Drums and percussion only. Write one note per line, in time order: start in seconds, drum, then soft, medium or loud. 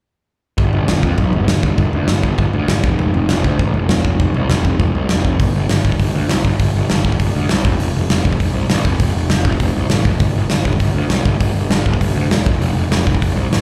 0.58 kick loud
0.58 floor tom medium
0.73 floor tom medium
0.88 snare loud
0.88 floor tom medium
1.03 kick medium
1.03 floor tom medium
1.18 kick medium
1.18 floor tom medium
1.33 floor tom medium
1.48 snare loud
1.48 floor tom medium
1.63 kick medium
1.63 floor tom medium
1.78 kick medium
1.78 floor tom medium
1.93 floor tom medium
2.08 snare loud
2.08 floor tom medium
2.23 kick medium
2.23 floor tom medium
2.38 kick medium
2.38 floor tom medium
2.53 floor tom medium
2.68 snare loud
2.68 floor tom medium
2.83 kick loud
2.83 floor tom soft
2.99 floor tom medium
3.14 floor tom medium
3.29 snare loud
3.29 floor tom medium
3.44 kick medium
3.44 floor tom medium
3.59 kick medium
3.59 floor tom medium
3.74 floor tom medium
3.89 snare loud
3.89 floor tom medium
4.04 kick medium
4.04 floor tom medium
4.20 kick medium
4.20 floor tom medium
4.34 floor tom medium
4.50 snare loud
4.50 floor tom medium
4.65 kick medium
4.65 floor tom medium
4.80 kick medium
4.80 floor tom medium
4.95 floor tom medium
5.09 snare loud
5.09 floor tom medium
5.25 kick medium
5.25 floor tom medium
5.40 kick medium
5.40 open hi-hat soft
5.69 snare loud
5.69 open hi-hat medium
5.85 kick medium
5.92 kick medium
6.00 kick medium
6.00 open hi-hat medium
6.29 snare loud
6.29 open hi-hat medium
6.45 kick medium
6.59 kick medium
6.59 open hi-hat medium
6.90 snare loud
6.90 open hi-hat soft
7.05 kick medium
7.12 kick medium
7.20 kick medium
7.20 open hi-hat medium
7.49 snare loud
7.49 open hi-hat medium
7.65 kick medium
7.80 open hi-hat medium
8.10 snare loud
8.10 open hi-hat soft
8.25 kick medium
8.33 kick medium
8.40 kick medium
8.40 open hi-hat medium
8.70 snare loud
8.70 open hi-hat medium
8.85 kick medium
9.00 kick loud
9.00 open hi-hat medium
9.30 snare loud
9.30 open hi-hat medium
9.45 kick medium
9.52 kick medium
9.60 kick medium
9.60 open hi-hat medium
9.90 snare loud
9.90 open hi-hat medium
10.05 kick medium
10.20 kick loud
10.20 open hi-hat soft
10.50 snare loud
10.50 open hi-hat soft
10.65 kick medium
10.73 kick medium
10.80 kick medium
10.80 open hi-hat medium
11.10 snare loud
11.10 open hi-hat soft
11.25 kick medium
11.40 kick medium
11.40 open hi-hat medium
11.71 snare loud
11.71 open hi-hat medium
11.86 kick medium
11.94 kick medium
12.01 kick medium
12.01 open hi-hat medium
12.31 snare loud
12.31 open hi-hat medium
12.46 kick loud
12.62 open hi-hat medium
12.92 snare loud
12.92 open hi-hat soft
13.07 kick medium
13.15 kick medium
13.22 kick medium
13.22 open hi-hat soft
13.53 snare loud
13.53 open hi-hat medium